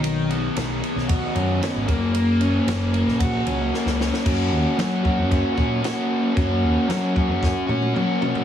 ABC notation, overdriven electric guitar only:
X:1
M:4/4
L:1/8
Q:1/4=114
K:F#mix
V:1 name="Overdriven electric guitar"
D, B, D, B, F C B, A, | A, C A, A, F C A, C | [A,CF]2 [A,CF] [CF]2 [CF] [A,CF]2 | [A,CF]2 [A,CF] [CF]2 [CF] [A,CF]2 |]